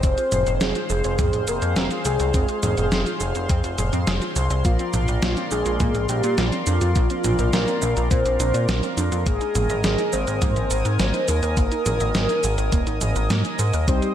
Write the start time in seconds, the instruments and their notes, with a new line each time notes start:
Already playing: analog synth pad C5
0.03 analog synth bass F1, synth arpeggio sound C4, analog synth pad G#4 F5 C6, soft synth lead C5, kick, closed hi-hat, shaker
0.18 synth arpeggio sound F4, closed hi-hat, shaker
0.32 analog synth bass F1, synth arpeggio sound G#4, closed hi-hat, mid tom, shaker
0.47 analog synth bass F1, synth arpeggio sound F5, closed hi-hat, shaker
0.61 analog synth bass F1, synth arpeggio sound C4, soft synth lead G#4, snare, closed hi-hat, shaker
0.75 synth arpeggio sound F4, closed hi-hat, shaker
0.90 analog synth bass F1, soft synth lead G#4, synth arpeggio sound G#4, shaker
1.04 analog synth bass F1, synth arpeggio sound C5, closed hi-hat, shaker
1.19 analog synth bass F2, synth arpeggio sound C4, kick, closed hi-hat, mid tom, shaker
1.33 analog synth bass F1, synth arpeggio sound F4, closed hi-hat, shaker
1.48 analog synth bass F1, synth arpeggio sound G#4, soft synth lead A#4, closed hi-hat, shaker
1.62 analog synth bass F2, synth arpeggio sound C5, closed hi-hat, shaker
1.76 analog synth bass F1, synth arpeggio sound C4, soft synth lead A#4, snare, closed hi-hat, shaker
1.91 synth arpeggio sound F4, closed hi-hat, shaker
2.05 analog synth bass C2, soft synth lead G#4, synth arpeggio sound G#4, closed hi-hat, shaker
2.20 analog synth bass C2, synth arpeggio sound C5, closed hi-hat, shaker
2.34 analog synth bass F1, synth arpeggio sound C4, kick, closed hi-hat, shaker
2.49 synth arpeggio sound F4, closed hi-hat, shaker
2.63 analog synth bass F1, synth arpeggio sound G#4, closed hi-hat, mid tom, shaker
2.77 analog synth bass F1, synth arpeggio sound F5, closed hi-hat, shaker
2.92 analog synth bass F1, synth arpeggio sound C4, snare, closed hi-hat, shaker
3.06 synth arpeggio sound F4, closed hi-hat, shaker
3.21 analog synth bass F1, synth arpeggio sound G#4, shaker
3.35 analog synth bass F1, synth arpeggio sound C5, closed hi-hat, shaker
3.49 analog synth bass F2, synth arpeggio sound C4, kick, closed hi-hat, shaker
3.64 analog synth bass F1, synth arpeggio sound F4, closed hi-hat, shaker
3.78 analog synth bass F1, synth arpeggio sound G#4, closed hi-hat, mid tom, shaker
3.93 analog synth bass F2, synth arpeggio sound C4, closed hi-hat, shaker
4.07 analog synth bass F1, synth arpeggio sound G#4, snare, closed hi-hat, shaker
4.22 synth arpeggio sound F4, closed hi-hat, shaker
4.36 analog synth bass C2, synth arpeggio sound C5, closed hi-hat, shaker
4.50 analog synth bass C2, synth arpeggio sound C4, closed hi-hat, shaker
4.65 analog synth bass A#1, synth arpeggio sound A#3, soft synth lead F4, analog synth pad A#4 D5 F5, kick, closed hi-hat, shaker
4.79 synth arpeggio sound C4, closed hi-hat, shaker
4.94 analog synth bass A#1, synth arpeggio sound D4, closed hi-hat, mid tom, shaker
5.08 analog synth bass A#1, synth arpeggio sound A#4, closed hi-hat, shaker
5.22 analog synth bass A#1, synth arpeggio sound A#3, soft synth lead F4, snare, closed hi-hat, shaker
5.37 synth arpeggio sound C4, closed hi-hat, shaker
5.51 analog synth bass A#1, synth arpeggio sound D4, soft synth lead G#4, shaker
5.66 analog synth bass A#1, synth arpeggio sound F4, closed hi-hat, shaker
5.80 analog synth bass A#2, synth arpeggio sound A#3, kick, closed hi-hat, mid tom, shaker
5.95 analog synth bass A#1, synth arpeggio sound C4, closed hi-hat, shaker
6.09 analog synth bass A#1, synth arpeggio sound D4, soft synth lead G4, closed hi-hat, shaker
6.24 analog synth bass A#2, synth arpeggio sound F4, closed hi-hat, shaker
6.38 analog synth bass A#1, synth arpeggio sound A#3, soft synth lead F4, snare, closed hi-hat, shaker
6.52 synth arpeggio sound C4, closed hi-hat, shaker
6.67 analog synth bass F2, synth arpeggio sound D4, closed hi-hat, shaker
6.81 analog synth bass F2, synth arpeggio sound F4, closed hi-hat, shaker
6.95 analog synth bass A#1, synth arpeggio sound A#3, soft synth lead F4, kick, closed hi-hat, shaker
7.10 synth arpeggio sound C4, closed hi-hat, shaker
7.24 analog synth bass A#1, synth arpeggio sound D4, closed hi-hat, mid tom, shaker
7.39 analog synth bass A#1, synth arpeggio sound A#4, closed hi-hat, shaker
7.53 analog synth bass A#1, synth arpeggio sound A#3, soft synth lead A#4, snare, closed hi-hat, shaker
7.68 synth arpeggio sound C4, closed hi-hat, shaker
7.82 analog synth bass A#1, synth arpeggio sound D4, shaker
7.97 analog synth bass A#1, synth arpeggio sound F4, closed hi-hat, shaker
8.11 analog synth bass A#2, synth arpeggio sound A#3, soft synth lead C5, kick, closed hi-hat, shaker
8.25 analog synth bass A#1, synth arpeggio sound C4, closed hi-hat, shaker
8.40 analog synth bass A#1, synth arpeggio sound D4, closed hi-hat, shaker
8.54 analog synth bass A#2, synth arpeggio sound F4, closed hi-hat, shaker
8.68 analog synth bass A#1, synth arpeggio sound A#3, snare, closed hi-hat, shaker
8.83 synth arpeggio sound C4, closed hi-hat, shaker
8.97 analog synth bass F2, synth arpeggio sound D4, closed hi-hat, shaker
9.12 analog synth bass F2, synth arpeggio sound F4, closed hi-hat, shaker
9.26 analog synth bass G#1, synth arpeggio sound A#3, soft synth lead G#4, analog synth pad D#5 G#5 D#6, kick, closed hi-hat, shaker
9.41 synth arpeggio sound D#4, closed hi-hat, shaker
9.55 analog synth bass G#1, synth arpeggio sound G#4, closed hi-hat, mid tom, shaker
9.70 analog synth bass G#1, synth arpeggio sound D#5, closed hi-hat, shaker
9.84 analog synth bass G#1, synth arpeggio sound A#3, soft synth lead G#4, snare, closed hi-hat, shaker
9.98 synth arpeggio sound D#4, closed hi-hat, shaker
10.13 analog synth bass G#1, synth arpeggio sound G#4, soft synth lead C5, shaker
10.27 analog synth bass G#1, synth arpeggio sound A#4, closed hi-hat, shaker
10.42 analog synth bass G#2, synth arpeggio sound A#3, kick, closed hi-hat, mid tom, shaker
10.56 analog synth bass G#1, synth arpeggio sound D#4, closed hi-hat, shaker
10.71 analog synth bass G#1, synth arpeggio sound G#4, closed hi-hat, shaker
10.85 analog synth bass G#2, synth arpeggio sound A#4, closed hi-hat, shaker
10.99 analog synth bass G#1, synth arpeggio sound A#3, snare, closed hi-hat, shaker
11.14 synth arpeggio sound D#4, closed hi-hat, shaker
11.28 analog synth bass D#2, synth arpeggio sound G#4, soft synth lead A#4, closed hi-hat, shaker
11.43 analog synth bass D#2, synth arpeggio sound A#4, closed hi-hat, shaker
11.57 analog synth bass G#1, synth arpeggio sound A#3, kick, closed hi-hat, shaker
11.72 synth arpeggio sound D#4, closed hi-hat, shaker
11.86 analog synth bass G#1, synth arpeggio sound G#4, closed hi-hat, mid tom, shaker
12.00 analog synth bass G#1, synth arpeggio sound D#5, closed hi-hat, shaker
12.15 analog synth bass G#1, synth arpeggio sound A#3, snare, closed hi-hat, shaker
12.29 synth arpeggio sound D#4, closed hi-hat, shaker
12.44 analog synth bass G#1, synth arpeggio sound G#4, closed hi-hat, shaker
12.58 analog synth bass G#1, synth arpeggio sound A#4, closed hi-hat, shaker
12.72 analog synth bass D#1, synth arpeggio sound A#3, kick, closed hi-hat, shaker
12.87 analog synth bass G#1, synth arpeggio sound D#4, closed hi-hat, shaker
13.01 analog synth bass G#1, synth arpeggio sound G#4, closed hi-hat, mid tom, shaker
13.16 analog synth bass G#1, synth arpeggio sound A#4, closed hi-hat, shaker
13.30 analog synth bass G#2, synth arpeggio sound A#3, snare, closed hi-hat, shaker
13.45 synth arpeggio sound D#4, closed hi-hat, shaker
13.59 analog synth bass G#2, synth arpeggio sound G#4, closed hi-hat, shaker
13.73 analog synth bass D#2, synth arpeggio sound A#4, closed hi-hat, shaker
13.88 analog synth bass C2, analog polysynth G3 C4 D#4 C5, synth arpeggio sound C4, soft synth lead G4, analog synth pad C5 G5, kick, closed hi-hat, shaker
14.02 synth arpeggio sound D#4, closed hi-hat, shaker